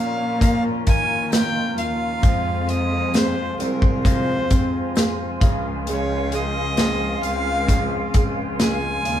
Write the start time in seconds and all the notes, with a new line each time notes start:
Already playing: A#2 F3 A#3 C#4 F4 F5 A#5
0.40 A#2 F3 A#3 C#4 F5, kick, closed hi-hat
0.45 F4
0.87 D#3 F4 G#5, kick, closed hi-hat
1.32 A#3 G5, snare, closed hi-hat, tambourine
1.77 D#2 F4 F5, closed hi-hat
2.21 F2 C3 F3 G#3 C5 G#5 C6, kick, closed hi-hat
2.25 C4 F4
2.69 C4 D#5, closed hi-hat
3.14 G#4 C5, snare, closed hi-hat, tambourine
3.59 C2 C4 A#4, closed hi-hat
3.82 kick
4.04 F2 C3 F3 G#3 C4 F4 C5, kick, closed hi-hat
4.51 F2 C4, kick, closed hi-hat
4.96 G#4, snare, closed hi-hat, tambourine
5.41 C#2 C#3 F3 G#3 F4 F5, kick, closed hi-hat
5.87 G#3 C#5, closed hi-hat
6.32 G#4 D#5, closed hi-hat
6.77 F3 G#3 C4 F4, snare, closed hi-hat, tambourine
7.22 C#2 G#3 C4 F4 F5, closed hi-hat
7.67 C#3 F3 G#3 C4, kick, closed hi-hat
7.72 F4
8.14 C#2 G#4, kick, closed hi-hat
8.59 G#3 G#5, snare, closed hi-hat, tambourine
9.05 D#2 C#3, closed hi-hat